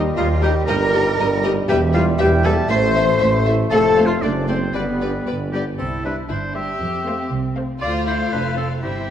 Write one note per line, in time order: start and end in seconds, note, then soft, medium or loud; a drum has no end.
0.00 0.12 D#2 loud
0.00 0.12 D#2 medium
0.00 1.66 G3 medium
0.00 1.65 D#5 medium
0.17 0.62 D#2 loud
0.17 0.62 D#2 medium
0.17 0.27 G3 medium
0.17 0.42 F4 loud
0.17 0.28 F4 medium
0.17 0.25 A#4 medium
0.17 0.26 D#5 medium
0.17 0.29 F5 medium
0.42 0.51 G3 medium
0.42 0.52 G3 medium
0.42 0.53 D#4 medium
0.42 0.53 G4 medium
0.42 0.68 G4 loud
0.42 0.50 A#4 medium
0.42 0.51 D#5 medium
0.42 0.54 G5 loud
0.67 1.13 G1 loud
0.67 1.13 G2 medium
0.67 0.77 G3 medium
0.67 0.75 A#4 medium
0.67 1.42 A#4 loud
0.67 0.76 D#5 medium
0.67 1.43 A#5 medium
0.93 1.03 G3 medium
0.93 1.02 G3 medium
0.93 1.02 D#4 medium
0.93 1.01 A#4 medium
0.93 1.01 D#5 medium
1.19 1.63 G1 medium
1.19 1.63 G2 medium
1.19 1.28 G3 medium
1.19 1.27 A#4 medium
1.19 1.27 D#5 medium
1.43 1.53 G3 medium
1.43 1.53 D#4 medium
1.43 1.51 A#4 medium
1.43 1.52 D#5 medium
1.68 2.14 E1 loud
1.68 2.14 E2 loud
1.68 2.71 G3 medium
1.68 1.79 G3 medium
1.68 1.77 G4 loud
1.68 1.81 G4 medium
1.68 1.76 B4 medium
1.68 3.68 E5 medium
1.68 1.78 E5 medium
1.68 1.81 G5 medium
1.93 2.04 G3 medium
1.93 2.04 E4 medium
1.93 2.01 F4 loud
1.93 2.05 F4 medium
1.93 2.01 B4 medium
1.93 2.02 E5 medium
1.93 2.06 F5 medium
2.19 2.57 E1 medium
2.19 2.64 E2 loud
2.19 2.28 G3 medium
2.19 2.27 G4 loud
2.19 2.31 G4 medium
2.19 2.28 B4 medium
2.19 2.27 E5 medium
2.19 2.47 G5 loud
2.44 2.55 G3 medium
2.44 2.54 G3 medium
2.44 2.55 E4 medium
2.44 2.52 A4 loud
2.44 2.57 A4 medium
2.44 2.53 B4 medium
2.44 2.52 E5 medium
2.44 2.70 A5 medium
2.69 3.15 A1 loud
2.69 4.46 A3 medium
2.69 2.79 A3 medium
2.69 3.44 C5 loud
2.69 2.78 C5 medium
2.69 3.45 C5 loud
2.69 2.77 E5 medium
2.69 3.45 C6 medium
2.95 3.04 A3 medium
2.95 3.05 A3 medium
2.95 3.05 E4 medium
2.95 3.03 C5 medium
2.95 3.03 E5 medium
3.20 3.65 A1 medium
3.20 3.29 A3 medium
3.20 3.28 C5 medium
3.20 3.28 E5 medium
3.45 3.55 A3 medium
3.45 3.56 A3 medium
3.45 3.56 E4 medium
3.45 3.53 C5 medium
3.45 3.54 E5 medium
3.70 4.17 F1 medium
3.70 3.80 A3 medium
3.70 4.07 A4 loud
3.70 4.03 A4 loud
3.70 3.78 C5 medium
3.70 4.45 C5 medium
3.70 3.79 F5 medium
3.70 4.08 A5 loud
3.96 4.06 A3 medium
3.96 4.07 C4 medium
3.96 4.04 C5 medium
3.96 4.04 F5 medium
4.06 4.24 F4 medium
4.06 4.13 F4 medium
4.06 4.23 F5 medium
4.21 4.68 F#1 medium
4.21 4.69 F#1 medium
4.21 4.32 A3 medium
4.21 4.30 D4 medium
4.21 4.51 D4 medium
4.21 4.29 C5 medium
4.21 4.48 D5 medium
4.21 4.31 D5 medium
4.48 4.58 A3 medium
4.48 4.57 A3 medium
4.48 4.74 C4 medium
4.48 4.58 C4 medium
4.48 4.77 C4 medium
4.48 4.56 C5 medium
4.48 4.74 C5 medium
4.48 4.56 D5 medium
4.73 5.21 G1 medium
4.73 5.49 G3 medium
4.73 4.83 G3 medium
4.73 5.26 B3 medium
4.73 5.28 B3 medium
4.73 4.81 B4 medium
4.73 5.26 B4 medium
4.73 4.82 D5 medium
4.73 5.49 D5 medium
5.00 5.09 G3 medium
5.00 5.11 G3 medium
5.00 5.11 D4 medium
5.00 5.08 B4 soft
5.00 5.10 D5 medium
5.27 5.73 G1 medium
5.27 5.35 G3 medium
5.27 5.35 B4 medium
5.27 5.36 D5 medium
5.53 5.62 G3 medium
5.53 5.61 G3 soft
5.53 5.62 B3 medium
5.53 5.63 D4 medium
5.53 5.65 G4 medium
5.53 5.61 B4 soft
5.53 5.63 D5 soft
5.78 6.19 C2 medium
5.78 5.86 C4 medium
5.78 6.26 E4 medium
5.78 6.04 A4 medium
5.78 triangle soft
6.04 6.24 G3 medium
6.04 6.12 D4 medium
6.04 6.17 B4 medium
6.04 6.24 C5 medium
6.04 6.24 E5 medium
6.29 6.70 G1 medium
6.29 6.80 D4 medium
6.29 6.37 E4 medium
6.29 6.55 C5 medium
6.54 6.74 G3 medium
6.54 7.29 G4 medium
6.54 6.74 C5 medium
6.54 6.74 E5 medium
6.54 7.30 E5 medium
6.81 7.21 F2 medium
6.81 7.79 C4 medium
7.06 7.25 A3 medium
7.06 7.25 C5 medium
7.06 7.25 F5 medium
7.31 7.71 C2 medium
7.56 7.75 A3 medium
7.56 7.75 C5 medium
7.56 7.75 F5 medium
7.81 8.28 D2 medium
7.81 8.79 A3 medium
7.81 8.04 F4 medium
7.81 8.81 F4 medium
7.81 8.79 C5 medium
7.81 7.93 D5 medium
7.81 8.79 F5 medium
8.07 8.15 E4 medium
8.07 8.34 C5 medium
8.32 8.82 F1 medium
8.32 8.40 D4 medium
8.32 8.57 B4 medium
8.57 8.65 C4 medium
8.57 8.69 A4 medium
8.82 9.10 G1 soft
8.82 9.10 G3 soft
8.82 9.10 C4 soft
8.82 9.10 E4 soft
8.82 9.10 G4 medium
8.82 9.10 C5 soft
8.82 9.10 E5 soft